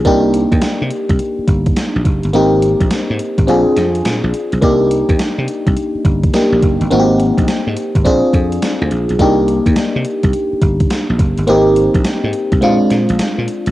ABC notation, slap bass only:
X:1
M:4/4
L:1/16
Q:"Swing 16ths" 1/4=105
K:Cm
V:1 name="Slap bass" clef=bass
C,,3 E,, z C, z C,, z2 G,,,2 z B,,, ^F,,, G,,, | A,,,3 B,,, z A,, z A,,, B,,, z F,,2 B,, B,,, z =B,,, | C,,3 E,, z C, z C,, z2 G,,,2 z B,,, ^F,,, G,,, | A,,,3 B,,, z A,, z A,,, B,,, z F,,2 z D,, B,,, =B,,, |
C,,3 E,, z C, z C,, z2 G,,,2 z B,,, ^F,,, G,,, | A,,,3 B,,, z A,, z C,, B,, z B,, B,,, z B,, z =B,,, |]